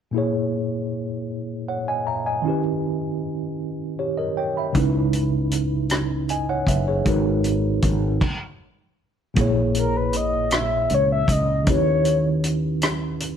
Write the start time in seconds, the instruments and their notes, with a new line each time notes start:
0.11 tine electric piano A#2 A#3 E4
0.16 tine electric piano G#4 C#5
1.68 tine electric piano C#5 F#5
1.88 tine electric piano D#5 G#5
2.07 tine electric piano E5 A#5
2.26 tine electric piano D#5 G#5
2.42 tine electric piano D#3 C#4 E4
2.48 tine electric piano G4 B4
3.99 tine electric piano G4 C#5
4.18 tine electric piano A#4 D#5
4.37 tine electric piano C#5 G5
4.57 tine electric piano E5 B5
4.73 fretless electric bass C#2, tine electric piano C#3 C#4 D#4, kick, closed hi-hat
4.78 tine electric piano E4 B4
5.13 closed hi-hat
5.52 closed hi-hat
5.90 cross-stick, closed hi-hat
6.29 tine electric piano D#5 G#5, closed hi-hat
6.49 tine electric piano C#5 F#5
6.67 fretless electric bass F#1, tine electric piano B4 E5, kick, closed hi-hat
6.88 tine electric piano G#4 C#5
7.05 fretless electric bass G#1, tine electric piano G#3 D#4 F#4 A#4 B4, kick, closed hi-hat
7.44 closed hi-hat
7.82 fretless electric bass G#1, kick, closed hi-hat
8.21 kick, crash
9.34 fretless electric bass A#1, tine electric piano A#2 A#3 E4, kick, closed hi-hat
9.39 tine electric piano G#4 C#5
9.75 soft synth lead A#4, closed hi-hat
9.97 soft synth lead B4
10.13 soft synth lead D#5, closed hi-hat
10.51 soft synth lead E5, cross-stick, closed hi-hat
10.90 fretless electric bass C#2, closed hi-hat
10.94 soft synth lead C#5
11.12 soft synth lead E5
11.28 fretless electric bass C#2, soft synth lead D#5, kick, closed hi-hat
11.65 fretless electric bass D#2, tine electric piano D#3 C#4 E4, kick, closed hi-hat
11.70 tine electric piano G4 B4, soft synth lead C#5
12.05 closed hi-hat
12.44 closed hi-hat
12.82 cross-stick, closed hi-hat
13.20 closed hi-hat